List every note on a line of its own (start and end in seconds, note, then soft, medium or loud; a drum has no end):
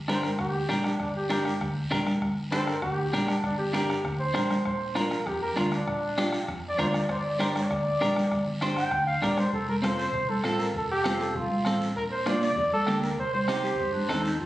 0.00 0.27 G1 medium
0.08 0.30 D4 medium
0.08 0.30 G4 medium
0.08 0.30 A#4 medium
0.08 0.25 C5 medium
0.08 bombo rim medium
0.08 high conga medium
0.08 short guiro medium
0.23 0.39 A#4 medium
0.23 bombo rim medium
0.23 high conga medium
0.23 short guiro medium
0.39 0.63 D2 loud
0.39 0.88 G4 medium
0.39 bombo low medium
0.39 bombo rim medium
0.39 high conga soft
0.39 long guiro medium
0.69 0.94 A#1 medium
0.69 0.90 D4 medium
0.69 0.91 G4 medium
0.69 0.91 A#4 medium
0.69 bombo rim medium
0.69 high conga medium
0.69 short guiro medium
0.84 1.00 D4 medium
0.84 bombo rim medium
0.84 short guiro medium
1.00 1.49 G1 medium
1.00 1.15 D4 medium
1.00 bombo low medium
1.00 bombo rim medium
1.00 long guiro medium
1.16 1.31 G4 medium
1.16 high conga soft
1.29 1.51 D4 medium
1.29 1.51 G4 medium
1.29 1.60 G4 loud
1.29 1.52 A#4 medium
1.29 bombo rim medium
1.29 high conga medium
1.29 short guiro medium
1.45 bombo rim medium
1.45 high conga medium
1.45 short guiro medium
1.61 1.85 D2 loud
1.61 bombo low medium
1.61 bombo rim medium
1.61 high conga soft
1.61 long guiro medium
1.91 2.16 A#1 medium
1.91 2.12 D4 medium
1.91 2.13 G4 medium
1.91 2.13 A#4 medium
1.91 bombo low medium
1.91 bombo rim medium
1.91 high conga medium
1.91 low conga medium
1.91 short guiro medium
2.06 bombo rim medium
2.06 high conga medium
2.06 short guiro medium
2.22 2.71 G1 medium
2.22 bombo low medium
2.22 bombo rim medium
2.22 long guiro medium
2.37 high conga soft
2.51 2.74 D4 medium
2.51 2.74 G4 medium
2.51 2.74 A4 medium
2.51 2.69 C5 loud
2.51 bombo rim medium
2.51 high conga medium
2.51 short guiro medium
2.67 2.81 A#4 medium
2.67 bombo rim medium
2.67 short guiro medium
2.82 3.07 D2 loud
2.82 3.30 G4 medium
2.82 bombo low medium
2.82 bombo rim medium
2.82 high conga soft
2.82 long guiro medium
3.13 3.38 A#1 medium
3.13 3.35 D4 medium
3.13 3.35 G4 medium
3.13 3.35 A#4 medium
3.13 bombo rim medium
3.13 high conga medium
3.13 short guiro medium
3.28 3.43 D4 medium
3.28 bombo rim medium
3.28 high conga medium
3.28 short guiro medium
3.43 3.92 G1 medium
3.43 3.58 D4 medium
3.43 bombo low medium
3.43 bombo rim medium
3.43 long guiro medium
3.58 3.73 G4 medium
3.58 high conga soft
3.58 low conga medium
3.73 3.95 D4 medium
3.73 3.95 G4 medium
3.73 4.04 G4 medium
3.73 3.96 A#4 medium
3.73 bombo rim medium
3.73 high conga medium
3.73 short guiro medium
3.90 bombo rim medium
3.90 short guiro medium
4.04 4.29 D2 loud
4.04 bombo low medium
4.04 bombo rim medium
4.04 high conga soft
4.04 long guiro medium
4.20 4.64 C5 loud
4.34 4.60 A#1 medium
4.34 4.56 D4 medium
4.34 4.56 G4 medium
4.34 4.56 A#4 medium
4.34 bombo rim medium
4.34 high conga medium
4.34 low conga medium
4.34 short guiro medium
4.50 bombo rim medium
4.50 high conga medium
4.50 short guiro medium
4.65 5.14 A#1 medium
4.65 4.98 C5 medium
4.65 bombo low medium
4.65 bombo rim medium
4.65 long guiro medium
4.81 high conga soft
4.95 5.17 D4 medium
4.95 5.17 F4 medium
4.95 5.17 A#4 medium
4.95 5.28 A#4 medium
4.95 bombo rim medium
4.95 high conga medium
4.95 short guiro medium
5.11 bombo rim medium
5.11 short guiro medium
5.26 5.51 F2 loud
5.26 5.41 G4 medium
5.26 bombo low medium
5.26 bombo rim medium
5.26 high conga soft
5.26 long guiro medium
5.43 5.57 A#4 medium
5.56 5.81 D2 medium
5.56 5.78 D4 medium
5.56 5.78 F4 medium
5.56 5.74 F4 medium
5.56 5.78 A#4 medium
5.56 bombo rim medium
5.56 high conga medium
5.56 short guiro medium
5.72 6.31 D4 loud
5.72 bombo rim medium
5.72 short guiro medium
5.87 6.36 A#1 medium
5.87 bombo low medium
5.87 bombo rim medium
5.87 long guiro medium
6.03 high conga soft
6.18 6.39 D4 medium
6.18 6.39 F4 medium
6.18 6.40 G4 medium
6.18 bombo rim medium
6.18 high conga medium
6.18 short guiro medium
6.32 bombo rim medium
6.32 short guiro medium
6.48 6.73 F2 loud
6.48 bombo low medium
6.48 bombo rim medium
6.48 high conga soft
6.48 long guiro medium
6.69 6.80 D5 loud
6.78 7.03 D2 medium
6.78 7.00 D4 medium
6.78 7.00 F4 medium
6.78 7.00 A#4 medium
6.78 6.89 C5 medium
6.78 bombo low medium
6.78 bombo rim medium
6.78 high conga medium
6.78 low conga medium
6.78 short guiro medium
6.88 6.97 D5 medium
6.94 7.11 D5 loud
6.94 bombo rim medium
6.94 short guiro medium
7.09 7.58 G1 loud
7.09 7.18 C5 medium
7.09 bombo low medium
7.09 bombo rim medium
7.09 long guiro medium
7.19 7.29 D5 medium
7.25 high conga soft
7.30 7.41 D5 medium
7.39 7.61 D4 medium
7.39 7.61 G4 medium
7.39 7.61 A#4 medium
7.39 7.49 C5 medium
7.39 bombo rim medium
7.39 high conga loud
7.39 short guiro medium
7.50 7.59 D5 medium
7.55 8.48 D5 loud
7.55 bombo rim medium
7.55 high conga medium
7.55 short guiro medium
7.70 7.95 D2 loud
7.70 bombo low medium
7.70 bombo rim medium
7.70 high conga soft
7.70 long guiro medium
8.01 8.25 A#1 medium
8.01 8.22 D4 medium
8.01 8.22 G4 medium
8.01 8.22 A#4 medium
8.01 bombo rim medium
8.01 high conga medium
8.01 short guiro medium
8.16 bombo rim medium
8.16 high conga medium
8.16 short guiro medium
8.31 8.80 G1 medium
8.31 bombo low medium
8.31 bombo rim medium
8.31 long guiro medium
8.47 high conga soft
8.47 low conga medium
8.61 8.83 D4 medium
8.61 8.83 G4 medium
8.61 8.83 C5 loud
8.61 bombo rim medium
8.61 high conga loud
8.61 short guiro medium
8.76 9.06 G5 loud
8.76 bombo rim medium
8.76 short guiro medium
8.91 9.16 D2 loud
8.91 bombo low medium
8.91 bombo rim medium
8.91 high conga soft
8.91 long guiro medium
9.07 9.22 F5 medium
9.22 9.47 A#1 medium
9.22 9.44 D4 medium
9.22 9.44 G4 medium
9.22 9.44 A#4 medium
9.22 9.39 D5 medium
9.22 bombo low medium
9.22 bombo rim medium
9.22 high conga medium
9.22 low conga medium
9.22 short guiro medium
9.37 9.52 C5 loud
9.37 bombo rim medium
9.37 high conga medium
9.37 short guiro medium
9.53 10.14 F1 medium
9.53 9.67 A4 medium
9.53 bombo low medium
9.53 high conga soft
9.53 long guiro medium
9.69 9.76 A#4 medium
9.69 high conga medium
9.82 10.04 C4 medium
9.82 10.04 F4 medium
9.82 10.04 A4 medium
9.82 9.97 C5 medium
9.82 bombo rim medium
9.82 high conga medium
9.82 short guiro medium
9.98 10.31 C5 loud
9.98 short guiro medium
10.14 10.26 C2 loud
10.14 bombo low medium
10.14 high conga soft
10.14 low conga medium
10.14 long guiro medium
10.29 10.62 A4 loud
10.29 high conga medium
10.44 10.74 A1 medium
10.44 10.66 C4 medium
10.44 10.66 F4 medium
10.44 10.66 A4 medium
10.44 bombo rim medium
10.44 high conga medium
10.44 short guiro medium
10.59 10.75 A#4 medium
10.59 short guiro medium
10.74 11.37 F1 medium
10.74 10.90 A4 medium
10.74 bombo low medium
10.74 high conga soft
10.74 low conga medium
10.74 long guiro medium
10.91 11.23 G4 loud
11.04 11.27 C4 medium
11.04 11.27 F4 medium
11.04 11.27 A4 medium
11.04 bombo rim medium
11.04 high conga medium
11.04 short guiro medium
11.20 11.38 A4 medium
11.20 short guiro medium
11.35 11.47 C2 loud
11.35 11.82 F4 medium
11.35 bombo low medium
11.35 high conga soft
11.35 low conga medium
11.35 long guiro medium
11.51 high conga medium
11.65 11.96 A1 medium
11.65 11.88 C4 medium
11.65 11.88 F4 medium
11.65 11.88 A4 medium
11.65 bombo rim medium
11.65 high conga medium
11.65 short guiro medium
11.81 short guiro medium
11.96 12.56 A#1 loud
11.96 12.03 A#4 loud
11.96 bombo low medium
11.96 high conga soft
11.96 long guiro medium
12.12 12.29 C5 loud
12.26 12.48 A#3 medium
12.26 12.48 D4 medium
12.26 12.48 F4 medium
12.26 12.42 D5 loud
12.26 bombo rim medium
12.26 high conga loud
12.26 short guiro medium
12.42 12.71 D5 loud
12.42 short guiro medium
12.56 12.69 F2 loud
12.56 bombo low medium
12.56 high conga soft
12.56 low conga medium
12.56 long guiro medium
12.72 13.01 A4 loud
12.72 high conga medium
12.87 13.18 D2 medium
12.87 13.09 A#3 medium
12.87 13.09 D4 medium
12.87 13.09 G4 medium
12.87 bombo rim medium
12.87 high conga medium
12.87 short guiro medium
13.03 13.17 A#4 medium
13.03 short guiro medium
13.18 13.78 C2 medium
13.18 13.33 C5 loud
13.18 bombo low medium
13.18 high conga soft
13.18 long guiro medium
13.33 14.21 C5 loud
13.33 high conga medium
13.48 13.70 C4 medium
13.48 13.70 D#4 medium
13.48 13.70 G4 medium
13.48 bombo rim medium
13.48 high conga medium
13.48 short guiro medium
13.63 13.94 G4 loud
13.63 short guiro medium
13.78 13.91 G2 loud
13.78 bombo low medium
13.78 high conga soft
13.78 low conga medium
13.78 long guiro medium
13.93 14.25 D4 loud
13.93 high conga medium
14.09 14.40 D#2 medium
14.09 14.30 C4 medium
14.09 14.31 D#4 medium
14.09 14.31 A4 loud
14.09 bombo rim medium
14.09 high conga medium
14.09 low conga medium
14.09 short guiro medium
14.24 14.41 D#4 medium
14.24 short guiro medium
14.40 14.46 F2 medium
14.40 14.46 F4 loud
14.40 bombo low medium
14.40 high conga soft
14.40 long guiro medium